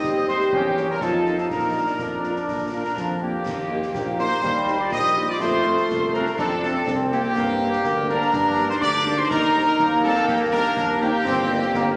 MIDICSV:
0, 0, Header, 1, 9, 480
1, 0, Start_track
1, 0, Tempo, 487409
1, 522, Time_signature, 2, 2, 24, 8
1, 11784, End_track
2, 0, Start_track
2, 0, Title_t, "Piccolo"
2, 0, Program_c, 0, 72
2, 0, Note_on_c, 0, 87, 103
2, 243, Note_off_c, 0, 87, 0
2, 278, Note_on_c, 0, 84, 91
2, 503, Note_off_c, 0, 84, 0
2, 516, Note_on_c, 0, 79, 87
2, 854, Note_off_c, 0, 79, 0
2, 891, Note_on_c, 0, 82, 70
2, 943, Note_off_c, 0, 82, 0
2, 1000, Note_on_c, 0, 81, 77
2, 1336, Note_off_c, 0, 81, 0
2, 1367, Note_on_c, 0, 81, 69
2, 1477, Note_off_c, 0, 81, 0
2, 1485, Note_on_c, 0, 82, 69
2, 2451, Note_off_c, 0, 82, 0
2, 2684, Note_on_c, 0, 82, 61
2, 3131, Note_off_c, 0, 82, 0
2, 3163, Note_on_c, 0, 79, 66
2, 4085, Note_off_c, 0, 79, 0
2, 4125, Note_on_c, 0, 84, 97
2, 4686, Note_off_c, 0, 84, 0
2, 4729, Note_on_c, 0, 86, 63
2, 4782, Note_off_c, 0, 86, 0
2, 4847, Note_on_c, 0, 87, 98
2, 5199, Note_on_c, 0, 86, 86
2, 5214, Note_off_c, 0, 87, 0
2, 5315, Note_off_c, 0, 86, 0
2, 5320, Note_on_c, 0, 84, 98
2, 6044, Note_on_c, 0, 82, 89
2, 6058, Note_off_c, 0, 84, 0
2, 6277, Note_off_c, 0, 82, 0
2, 6283, Note_on_c, 0, 81, 93
2, 6507, Note_off_c, 0, 81, 0
2, 6534, Note_on_c, 0, 81, 69
2, 6976, Note_off_c, 0, 81, 0
2, 7002, Note_on_c, 0, 79, 89
2, 7745, Note_off_c, 0, 79, 0
2, 7964, Note_on_c, 0, 82, 92
2, 8523, Note_off_c, 0, 82, 0
2, 8569, Note_on_c, 0, 84, 86
2, 8684, Note_on_c, 0, 86, 105
2, 8698, Note_off_c, 0, 84, 0
2, 9041, Note_on_c, 0, 84, 95
2, 9055, Note_off_c, 0, 86, 0
2, 9158, Note_off_c, 0, 84, 0
2, 9164, Note_on_c, 0, 82, 108
2, 9843, Note_off_c, 0, 82, 0
2, 9892, Note_on_c, 0, 81, 92
2, 10109, Note_off_c, 0, 81, 0
2, 10138, Note_on_c, 0, 79, 102
2, 10353, Note_off_c, 0, 79, 0
2, 10371, Note_on_c, 0, 82, 89
2, 10811, Note_off_c, 0, 82, 0
2, 10849, Note_on_c, 0, 79, 104
2, 11763, Note_off_c, 0, 79, 0
2, 11784, End_track
3, 0, Start_track
3, 0, Title_t, "Trumpet section"
3, 0, Program_c, 1, 61
3, 0, Note_on_c, 1, 75, 108
3, 244, Note_off_c, 1, 75, 0
3, 281, Note_on_c, 1, 72, 104
3, 522, Note_off_c, 1, 72, 0
3, 524, Note_on_c, 1, 67, 90
3, 883, Note_off_c, 1, 67, 0
3, 890, Note_on_c, 1, 70, 89
3, 998, Note_off_c, 1, 70, 0
3, 1005, Note_on_c, 1, 69, 89
3, 1361, Note_off_c, 1, 69, 0
3, 1373, Note_on_c, 1, 69, 70
3, 1425, Note_off_c, 1, 69, 0
3, 1493, Note_on_c, 1, 70, 77
3, 2650, Note_off_c, 1, 70, 0
3, 2689, Note_on_c, 1, 70, 71
3, 3133, Note_off_c, 1, 70, 0
3, 3167, Note_on_c, 1, 67, 75
3, 4127, Note_off_c, 1, 67, 0
3, 4137, Note_on_c, 1, 72, 109
3, 4692, Note_off_c, 1, 72, 0
3, 4739, Note_on_c, 1, 74, 91
3, 4852, Note_off_c, 1, 74, 0
3, 4852, Note_on_c, 1, 75, 114
3, 5184, Note_off_c, 1, 75, 0
3, 5213, Note_on_c, 1, 74, 96
3, 5321, Note_off_c, 1, 74, 0
3, 5328, Note_on_c, 1, 72, 102
3, 6007, Note_off_c, 1, 72, 0
3, 6043, Note_on_c, 1, 70, 97
3, 6280, Note_on_c, 1, 69, 96
3, 6284, Note_off_c, 1, 70, 0
3, 6505, Note_off_c, 1, 69, 0
3, 6523, Note_on_c, 1, 69, 95
3, 6867, Note_off_c, 1, 69, 0
3, 7001, Note_on_c, 1, 67, 108
3, 7922, Note_off_c, 1, 67, 0
3, 7963, Note_on_c, 1, 70, 120
3, 8561, Note_on_c, 1, 72, 108
3, 8563, Note_off_c, 1, 70, 0
3, 8616, Note_off_c, 1, 72, 0
3, 8679, Note_on_c, 1, 74, 127
3, 9015, Note_off_c, 1, 74, 0
3, 9046, Note_on_c, 1, 72, 107
3, 9156, Note_on_c, 1, 70, 116
3, 9164, Note_off_c, 1, 72, 0
3, 9838, Note_off_c, 1, 70, 0
3, 9882, Note_on_c, 1, 69, 117
3, 10120, Note_on_c, 1, 67, 95
3, 10121, Note_off_c, 1, 69, 0
3, 10228, Note_off_c, 1, 67, 0
3, 10360, Note_on_c, 1, 70, 112
3, 10806, Note_off_c, 1, 70, 0
3, 10847, Note_on_c, 1, 67, 114
3, 11762, Note_off_c, 1, 67, 0
3, 11784, End_track
4, 0, Start_track
4, 0, Title_t, "Euphonium"
4, 0, Program_c, 2, 58
4, 40, Note_on_c, 2, 67, 93
4, 962, Note_off_c, 2, 67, 0
4, 1006, Note_on_c, 2, 65, 71
4, 1451, Note_off_c, 2, 65, 0
4, 1483, Note_on_c, 2, 62, 71
4, 3125, Note_off_c, 2, 62, 0
4, 11784, End_track
5, 0, Start_track
5, 0, Title_t, "Woodwind section"
5, 0, Program_c, 3, 71
5, 0, Note_on_c, 3, 67, 67
5, 0, Note_on_c, 3, 72, 70
5, 484, Note_off_c, 3, 67, 0
5, 485, Note_off_c, 3, 72, 0
5, 527, Note_on_c, 3, 70, 67
5, 530, Note_on_c, 3, 73, 66
5, 1005, Note_off_c, 3, 70, 0
5, 1006, Note_off_c, 3, 73, 0
5, 1007, Note_on_c, 3, 75, 66
5, 1010, Note_on_c, 3, 72, 63
5, 1486, Note_off_c, 3, 75, 0
5, 1487, Note_off_c, 3, 72, 0
5, 1487, Note_on_c, 3, 74, 54
5, 1489, Note_on_c, 3, 70, 50
5, 2525, Note_off_c, 3, 70, 0
5, 2525, Note_off_c, 3, 74, 0
5, 2692, Note_on_c, 3, 62, 64
5, 3135, Note_off_c, 3, 62, 0
5, 3164, Note_on_c, 3, 58, 68
5, 4085, Note_off_c, 3, 58, 0
5, 4132, Note_on_c, 3, 63, 87
5, 4729, Note_off_c, 3, 63, 0
5, 4735, Note_on_c, 3, 65, 72
5, 4850, Note_off_c, 3, 65, 0
5, 4853, Note_on_c, 3, 67, 93
5, 5209, Note_off_c, 3, 67, 0
5, 5209, Note_on_c, 3, 65, 90
5, 5263, Note_off_c, 3, 65, 0
5, 5326, Note_on_c, 3, 65, 93
5, 6006, Note_off_c, 3, 65, 0
5, 6053, Note_on_c, 3, 62, 91
5, 6159, Note_off_c, 3, 62, 0
5, 6293, Note_on_c, 3, 60, 88
5, 6400, Note_off_c, 3, 60, 0
5, 6532, Note_on_c, 3, 60, 81
5, 6975, Note_off_c, 3, 60, 0
5, 7011, Note_on_c, 3, 58, 97
5, 7927, Note_off_c, 3, 58, 0
5, 7963, Note_on_c, 3, 62, 87
5, 8523, Note_off_c, 3, 62, 0
5, 8559, Note_on_c, 3, 63, 81
5, 8614, Note_off_c, 3, 63, 0
5, 8676, Note_on_c, 3, 67, 98
5, 9013, Note_off_c, 3, 67, 0
5, 9036, Note_on_c, 3, 63, 95
5, 9147, Note_off_c, 3, 63, 0
5, 9159, Note_on_c, 3, 63, 99
5, 9840, Note_off_c, 3, 63, 0
5, 9888, Note_on_c, 3, 60, 93
5, 10107, Note_off_c, 3, 60, 0
5, 10120, Note_on_c, 3, 58, 93
5, 10343, Note_off_c, 3, 58, 0
5, 10364, Note_on_c, 3, 62, 96
5, 10841, Note_off_c, 3, 62, 0
5, 10844, Note_on_c, 3, 58, 101
5, 11760, Note_off_c, 3, 58, 0
5, 11784, End_track
6, 0, Start_track
6, 0, Title_t, "French horn section"
6, 0, Program_c, 4, 60
6, 269, Note_on_c, 4, 60, 60
6, 271, Note_on_c, 4, 55, 60
6, 272, Note_on_c, 4, 67, 59
6, 358, Note_off_c, 4, 60, 0
6, 360, Note_off_c, 4, 55, 0
6, 361, Note_off_c, 4, 67, 0
6, 755, Note_on_c, 4, 61, 63
6, 755, Note_on_c, 4, 67, 57
6, 756, Note_on_c, 4, 58, 58
6, 843, Note_off_c, 4, 61, 0
6, 843, Note_off_c, 4, 67, 0
6, 844, Note_off_c, 4, 58, 0
6, 1239, Note_on_c, 4, 63, 49
6, 1239, Note_on_c, 4, 65, 48
6, 1242, Note_on_c, 4, 60, 51
6, 1326, Note_off_c, 4, 65, 0
6, 1327, Note_off_c, 4, 63, 0
6, 1329, Note_off_c, 4, 60, 0
6, 1716, Note_on_c, 4, 62, 50
6, 1717, Note_on_c, 4, 58, 50
6, 1717, Note_on_c, 4, 65, 48
6, 1805, Note_off_c, 4, 58, 0
6, 1805, Note_off_c, 4, 62, 0
6, 1805, Note_off_c, 4, 65, 0
6, 2199, Note_on_c, 4, 65, 45
6, 2201, Note_on_c, 4, 62, 45
6, 2203, Note_on_c, 4, 58, 46
6, 2287, Note_off_c, 4, 65, 0
6, 2288, Note_off_c, 4, 62, 0
6, 2289, Note_off_c, 4, 58, 0
6, 2680, Note_on_c, 4, 62, 43
6, 2682, Note_on_c, 4, 58, 43
6, 2683, Note_on_c, 4, 65, 46
6, 2768, Note_off_c, 4, 62, 0
6, 2769, Note_off_c, 4, 58, 0
6, 2770, Note_off_c, 4, 65, 0
6, 3165, Note_on_c, 4, 65, 42
6, 3166, Note_on_c, 4, 58, 42
6, 3166, Note_on_c, 4, 62, 39
6, 3252, Note_off_c, 4, 58, 0
6, 3252, Note_off_c, 4, 62, 0
6, 3252, Note_off_c, 4, 65, 0
6, 3638, Note_on_c, 4, 58, 69
6, 3638, Note_on_c, 4, 67, 69
6, 3639, Note_on_c, 4, 63, 65
6, 3726, Note_off_c, 4, 58, 0
6, 3726, Note_off_c, 4, 67, 0
6, 3727, Note_off_c, 4, 63, 0
6, 4125, Note_on_c, 4, 63, 68
6, 4127, Note_on_c, 4, 58, 68
6, 4127, Note_on_c, 4, 67, 63
6, 4212, Note_off_c, 4, 63, 0
6, 4213, Note_off_c, 4, 58, 0
6, 4213, Note_off_c, 4, 67, 0
6, 4605, Note_on_c, 4, 67, 62
6, 4607, Note_on_c, 4, 58, 66
6, 4607, Note_on_c, 4, 63, 69
6, 4692, Note_off_c, 4, 67, 0
6, 4693, Note_off_c, 4, 58, 0
6, 4693, Note_off_c, 4, 63, 0
6, 5087, Note_on_c, 4, 63, 66
6, 5089, Note_on_c, 4, 58, 69
6, 5089, Note_on_c, 4, 67, 65
6, 5173, Note_off_c, 4, 63, 0
6, 5174, Note_off_c, 4, 58, 0
6, 5174, Note_off_c, 4, 67, 0
6, 5568, Note_on_c, 4, 65, 63
6, 5570, Note_on_c, 4, 57, 72
6, 5571, Note_on_c, 4, 60, 65
6, 5654, Note_off_c, 4, 65, 0
6, 5655, Note_off_c, 4, 57, 0
6, 5656, Note_off_c, 4, 60, 0
6, 6047, Note_on_c, 4, 65, 70
6, 6048, Note_on_c, 4, 60, 69
6, 6050, Note_on_c, 4, 57, 68
6, 6133, Note_off_c, 4, 65, 0
6, 6134, Note_off_c, 4, 60, 0
6, 6135, Note_off_c, 4, 57, 0
6, 6527, Note_on_c, 4, 60, 62
6, 6528, Note_on_c, 4, 65, 68
6, 6530, Note_on_c, 4, 57, 63
6, 6613, Note_off_c, 4, 60, 0
6, 6613, Note_off_c, 4, 65, 0
6, 6615, Note_off_c, 4, 57, 0
6, 7010, Note_on_c, 4, 65, 61
6, 7011, Note_on_c, 4, 57, 63
6, 7012, Note_on_c, 4, 60, 66
6, 7095, Note_off_c, 4, 65, 0
6, 7096, Note_off_c, 4, 57, 0
6, 7097, Note_off_c, 4, 60, 0
6, 7490, Note_on_c, 4, 58, 68
6, 7491, Note_on_c, 4, 55, 66
6, 7491, Note_on_c, 4, 62, 64
6, 7575, Note_off_c, 4, 58, 0
6, 7576, Note_off_c, 4, 55, 0
6, 7576, Note_off_c, 4, 62, 0
6, 7963, Note_on_c, 4, 55, 68
6, 7964, Note_on_c, 4, 58, 72
6, 7964, Note_on_c, 4, 62, 68
6, 8049, Note_off_c, 4, 55, 0
6, 8050, Note_off_c, 4, 62, 0
6, 8051, Note_off_c, 4, 58, 0
6, 8445, Note_on_c, 4, 55, 66
6, 8445, Note_on_c, 4, 62, 69
6, 8446, Note_on_c, 4, 58, 77
6, 8531, Note_off_c, 4, 55, 0
6, 8531, Note_off_c, 4, 58, 0
6, 8531, Note_off_c, 4, 62, 0
6, 8924, Note_on_c, 4, 55, 62
6, 8926, Note_on_c, 4, 58, 62
6, 8926, Note_on_c, 4, 62, 70
6, 9010, Note_off_c, 4, 55, 0
6, 9011, Note_off_c, 4, 58, 0
6, 9011, Note_off_c, 4, 62, 0
6, 9399, Note_on_c, 4, 55, 68
6, 9400, Note_on_c, 4, 63, 68
6, 9401, Note_on_c, 4, 60, 70
6, 9486, Note_off_c, 4, 55, 0
6, 9487, Note_off_c, 4, 63, 0
6, 9488, Note_off_c, 4, 60, 0
6, 9880, Note_on_c, 4, 55, 65
6, 9882, Note_on_c, 4, 63, 75
6, 9885, Note_on_c, 4, 60, 71
6, 9967, Note_off_c, 4, 55, 0
6, 9968, Note_off_c, 4, 63, 0
6, 9970, Note_off_c, 4, 60, 0
6, 10364, Note_on_c, 4, 60, 73
6, 10366, Note_on_c, 4, 55, 74
6, 10366, Note_on_c, 4, 63, 72
6, 10450, Note_off_c, 4, 60, 0
6, 10451, Note_off_c, 4, 55, 0
6, 10451, Note_off_c, 4, 63, 0
6, 10848, Note_on_c, 4, 55, 73
6, 10849, Note_on_c, 4, 60, 71
6, 10849, Note_on_c, 4, 63, 80
6, 10932, Note_off_c, 4, 55, 0
6, 10933, Note_off_c, 4, 60, 0
6, 10933, Note_off_c, 4, 63, 0
6, 11324, Note_on_c, 4, 63, 77
6, 11326, Note_on_c, 4, 55, 80
6, 11326, Note_on_c, 4, 58, 77
6, 11409, Note_off_c, 4, 63, 0
6, 11411, Note_off_c, 4, 55, 0
6, 11411, Note_off_c, 4, 58, 0
6, 11784, End_track
7, 0, Start_track
7, 0, Title_t, "Trombone section"
7, 0, Program_c, 5, 61
7, 0, Note_on_c, 5, 55, 67
7, 0, Note_on_c, 5, 60, 73
7, 485, Note_off_c, 5, 55, 0
7, 486, Note_off_c, 5, 60, 0
7, 520, Note_on_c, 5, 58, 68
7, 522, Note_on_c, 5, 61, 66
7, 969, Note_off_c, 5, 61, 0
7, 995, Note_on_c, 5, 53, 70
7, 997, Note_on_c, 5, 63, 67
7, 1002, Note_off_c, 5, 58, 0
7, 1475, Note_off_c, 5, 53, 0
7, 1487, Note_on_c, 5, 53, 55
7, 1887, Note_off_c, 5, 53, 0
7, 1913, Note_off_c, 5, 63, 0
7, 1963, Note_on_c, 5, 62, 81
7, 2645, Note_off_c, 5, 62, 0
7, 2686, Note_on_c, 5, 58, 53
7, 2794, Note_off_c, 5, 58, 0
7, 2924, Note_on_c, 5, 53, 59
7, 3371, Note_off_c, 5, 53, 0
7, 3890, Note_on_c, 5, 58, 84
7, 4334, Note_off_c, 5, 58, 0
7, 4353, Note_on_c, 5, 55, 89
7, 5280, Note_off_c, 5, 55, 0
7, 5318, Note_on_c, 5, 57, 90
7, 6242, Note_off_c, 5, 57, 0
7, 6290, Note_on_c, 5, 62, 94
7, 6734, Note_off_c, 5, 62, 0
7, 6769, Note_on_c, 5, 60, 79
7, 7243, Note_on_c, 5, 58, 82
7, 7246, Note_off_c, 5, 60, 0
7, 7689, Note_off_c, 5, 58, 0
7, 7718, Note_on_c, 5, 58, 84
7, 8166, Note_off_c, 5, 58, 0
7, 8205, Note_on_c, 5, 62, 97
7, 9123, Note_off_c, 5, 62, 0
7, 9163, Note_on_c, 5, 63, 85
7, 9642, Note_off_c, 5, 63, 0
7, 9642, Note_on_c, 5, 58, 100
7, 11040, Note_off_c, 5, 58, 0
7, 11074, Note_on_c, 5, 60, 101
7, 11422, Note_off_c, 5, 60, 0
7, 11556, Note_on_c, 5, 58, 97
7, 11784, Note_off_c, 5, 58, 0
7, 11784, End_track
8, 0, Start_track
8, 0, Title_t, "Tuba"
8, 0, Program_c, 6, 58
8, 37, Note_on_c, 6, 39, 75
8, 439, Note_off_c, 6, 39, 0
8, 517, Note_on_c, 6, 40, 76
8, 920, Note_off_c, 6, 40, 0
8, 997, Note_on_c, 6, 41, 79
8, 1400, Note_off_c, 6, 41, 0
8, 1479, Note_on_c, 6, 46, 59
8, 1882, Note_off_c, 6, 46, 0
8, 1963, Note_on_c, 6, 41, 57
8, 2364, Note_off_c, 6, 41, 0
8, 2440, Note_on_c, 6, 46, 54
8, 2842, Note_off_c, 6, 46, 0
8, 2921, Note_on_c, 6, 41, 56
8, 3323, Note_off_c, 6, 41, 0
8, 3399, Note_on_c, 6, 39, 77
8, 3802, Note_off_c, 6, 39, 0
8, 3878, Note_on_c, 6, 34, 88
8, 4237, Note_off_c, 6, 34, 0
8, 4358, Note_on_c, 6, 39, 87
8, 4762, Note_off_c, 6, 39, 0
8, 4841, Note_on_c, 6, 34, 83
8, 5243, Note_off_c, 6, 34, 0
8, 5319, Note_on_c, 6, 41, 75
8, 5722, Note_off_c, 6, 41, 0
8, 5802, Note_on_c, 6, 36, 78
8, 6203, Note_off_c, 6, 36, 0
8, 6280, Note_on_c, 6, 41, 85
8, 6682, Note_off_c, 6, 41, 0
8, 6761, Note_on_c, 6, 36, 86
8, 7162, Note_off_c, 6, 36, 0
8, 7239, Note_on_c, 6, 43, 84
8, 7641, Note_off_c, 6, 43, 0
8, 7719, Note_on_c, 6, 38, 90
8, 8121, Note_off_c, 6, 38, 0
8, 8200, Note_on_c, 6, 43, 88
8, 8601, Note_off_c, 6, 43, 0
8, 8684, Note_on_c, 6, 38, 92
8, 9083, Note_off_c, 6, 38, 0
8, 9159, Note_on_c, 6, 39, 81
8, 9560, Note_off_c, 6, 39, 0
8, 9636, Note_on_c, 6, 39, 100
8, 10038, Note_off_c, 6, 39, 0
8, 10121, Note_on_c, 6, 39, 85
8, 10520, Note_off_c, 6, 39, 0
8, 10598, Note_on_c, 6, 39, 93
8, 10956, Note_off_c, 6, 39, 0
8, 11076, Note_on_c, 6, 31, 93
8, 11477, Note_off_c, 6, 31, 0
8, 11556, Note_on_c, 6, 31, 101
8, 11784, Note_off_c, 6, 31, 0
8, 11784, End_track
9, 0, Start_track
9, 0, Title_t, "Drums"
9, 39, Note_on_c, 9, 35, 78
9, 39, Note_on_c, 9, 38, 72
9, 137, Note_off_c, 9, 35, 0
9, 137, Note_off_c, 9, 38, 0
9, 280, Note_on_c, 9, 38, 53
9, 379, Note_off_c, 9, 38, 0
9, 399, Note_on_c, 9, 38, 53
9, 498, Note_off_c, 9, 38, 0
9, 516, Note_on_c, 9, 35, 89
9, 614, Note_off_c, 9, 35, 0
9, 758, Note_on_c, 9, 38, 50
9, 857, Note_off_c, 9, 38, 0
9, 997, Note_on_c, 9, 35, 76
9, 997, Note_on_c, 9, 38, 79
9, 1095, Note_off_c, 9, 35, 0
9, 1095, Note_off_c, 9, 38, 0
9, 1241, Note_on_c, 9, 38, 47
9, 1340, Note_off_c, 9, 38, 0
9, 1361, Note_on_c, 9, 38, 47
9, 1460, Note_off_c, 9, 38, 0
9, 1481, Note_on_c, 9, 35, 80
9, 1481, Note_on_c, 9, 38, 61
9, 1579, Note_off_c, 9, 35, 0
9, 1579, Note_off_c, 9, 38, 0
9, 1960, Note_on_c, 9, 35, 72
9, 1960, Note_on_c, 9, 38, 68
9, 2058, Note_off_c, 9, 35, 0
9, 2058, Note_off_c, 9, 38, 0
9, 2203, Note_on_c, 9, 38, 49
9, 2302, Note_off_c, 9, 38, 0
9, 2326, Note_on_c, 9, 38, 41
9, 2425, Note_off_c, 9, 38, 0
9, 2443, Note_on_c, 9, 35, 77
9, 2443, Note_on_c, 9, 38, 55
9, 2541, Note_off_c, 9, 35, 0
9, 2541, Note_off_c, 9, 38, 0
9, 2928, Note_on_c, 9, 35, 71
9, 2928, Note_on_c, 9, 38, 70
9, 3026, Note_off_c, 9, 35, 0
9, 3026, Note_off_c, 9, 38, 0
9, 3407, Note_on_c, 9, 35, 95
9, 3407, Note_on_c, 9, 38, 75
9, 3407, Note_on_c, 9, 49, 53
9, 3506, Note_off_c, 9, 35, 0
9, 3506, Note_off_c, 9, 38, 0
9, 3506, Note_off_c, 9, 49, 0
9, 3768, Note_on_c, 9, 38, 56
9, 3866, Note_off_c, 9, 38, 0
9, 3887, Note_on_c, 9, 35, 78
9, 3887, Note_on_c, 9, 38, 79
9, 3985, Note_off_c, 9, 35, 0
9, 3985, Note_off_c, 9, 38, 0
9, 4124, Note_on_c, 9, 38, 54
9, 4223, Note_off_c, 9, 38, 0
9, 4242, Note_on_c, 9, 38, 51
9, 4340, Note_off_c, 9, 38, 0
9, 4364, Note_on_c, 9, 35, 85
9, 4364, Note_on_c, 9, 38, 80
9, 4462, Note_off_c, 9, 35, 0
9, 4462, Note_off_c, 9, 38, 0
9, 4607, Note_on_c, 9, 38, 62
9, 4706, Note_off_c, 9, 38, 0
9, 4846, Note_on_c, 9, 35, 73
9, 4846, Note_on_c, 9, 38, 84
9, 4944, Note_off_c, 9, 35, 0
9, 4944, Note_off_c, 9, 38, 0
9, 5084, Note_on_c, 9, 38, 52
9, 5183, Note_off_c, 9, 38, 0
9, 5323, Note_on_c, 9, 35, 81
9, 5323, Note_on_c, 9, 38, 86
9, 5422, Note_off_c, 9, 35, 0
9, 5422, Note_off_c, 9, 38, 0
9, 5685, Note_on_c, 9, 38, 60
9, 5784, Note_off_c, 9, 38, 0
9, 5807, Note_on_c, 9, 35, 81
9, 5807, Note_on_c, 9, 38, 80
9, 5906, Note_off_c, 9, 35, 0
9, 5906, Note_off_c, 9, 38, 0
9, 6047, Note_on_c, 9, 38, 48
9, 6145, Note_off_c, 9, 38, 0
9, 6167, Note_on_c, 9, 38, 56
9, 6265, Note_off_c, 9, 38, 0
9, 6290, Note_on_c, 9, 35, 81
9, 6290, Note_on_c, 9, 38, 80
9, 6388, Note_off_c, 9, 35, 0
9, 6388, Note_off_c, 9, 38, 0
9, 6529, Note_on_c, 9, 38, 57
9, 6627, Note_off_c, 9, 38, 0
9, 6770, Note_on_c, 9, 35, 88
9, 6770, Note_on_c, 9, 38, 80
9, 6868, Note_off_c, 9, 35, 0
9, 6868, Note_off_c, 9, 38, 0
9, 7010, Note_on_c, 9, 38, 51
9, 7108, Note_off_c, 9, 38, 0
9, 7249, Note_on_c, 9, 35, 84
9, 7249, Note_on_c, 9, 38, 81
9, 7249, Note_on_c, 9, 49, 32
9, 7347, Note_off_c, 9, 35, 0
9, 7347, Note_off_c, 9, 38, 0
9, 7347, Note_off_c, 9, 49, 0
9, 7610, Note_on_c, 9, 38, 57
9, 7709, Note_off_c, 9, 38, 0
9, 7725, Note_on_c, 9, 35, 76
9, 7725, Note_on_c, 9, 38, 75
9, 7823, Note_off_c, 9, 35, 0
9, 7823, Note_off_c, 9, 38, 0
9, 7969, Note_on_c, 9, 38, 49
9, 8067, Note_off_c, 9, 38, 0
9, 8090, Note_on_c, 9, 38, 55
9, 8188, Note_off_c, 9, 38, 0
9, 8207, Note_on_c, 9, 35, 91
9, 8207, Note_on_c, 9, 38, 85
9, 8306, Note_off_c, 9, 35, 0
9, 8306, Note_off_c, 9, 38, 0
9, 8445, Note_on_c, 9, 38, 58
9, 8544, Note_off_c, 9, 38, 0
9, 8683, Note_on_c, 9, 35, 73
9, 8683, Note_on_c, 9, 38, 74
9, 8781, Note_off_c, 9, 35, 0
9, 8781, Note_off_c, 9, 38, 0
9, 8926, Note_on_c, 9, 38, 58
9, 9025, Note_off_c, 9, 38, 0
9, 9165, Note_on_c, 9, 35, 90
9, 9165, Note_on_c, 9, 38, 86
9, 9263, Note_off_c, 9, 35, 0
9, 9263, Note_off_c, 9, 38, 0
9, 9526, Note_on_c, 9, 38, 55
9, 9624, Note_off_c, 9, 38, 0
9, 9647, Note_on_c, 9, 35, 79
9, 9647, Note_on_c, 9, 38, 79
9, 9746, Note_off_c, 9, 35, 0
9, 9746, Note_off_c, 9, 38, 0
9, 9887, Note_on_c, 9, 38, 52
9, 9985, Note_off_c, 9, 38, 0
9, 10008, Note_on_c, 9, 38, 59
9, 10106, Note_off_c, 9, 38, 0
9, 10125, Note_on_c, 9, 35, 90
9, 10125, Note_on_c, 9, 38, 65
9, 10223, Note_off_c, 9, 35, 0
9, 10223, Note_off_c, 9, 38, 0
9, 10603, Note_on_c, 9, 35, 86
9, 10603, Note_on_c, 9, 38, 82
9, 10701, Note_off_c, 9, 35, 0
9, 10701, Note_off_c, 9, 38, 0
9, 11085, Note_on_c, 9, 35, 88
9, 11085, Note_on_c, 9, 38, 84
9, 11085, Note_on_c, 9, 49, 56
9, 11183, Note_off_c, 9, 35, 0
9, 11183, Note_off_c, 9, 38, 0
9, 11183, Note_off_c, 9, 49, 0
9, 11445, Note_on_c, 9, 38, 60
9, 11543, Note_off_c, 9, 38, 0
9, 11564, Note_on_c, 9, 35, 79
9, 11564, Note_on_c, 9, 38, 85
9, 11663, Note_off_c, 9, 35, 0
9, 11663, Note_off_c, 9, 38, 0
9, 11784, End_track
0, 0, End_of_file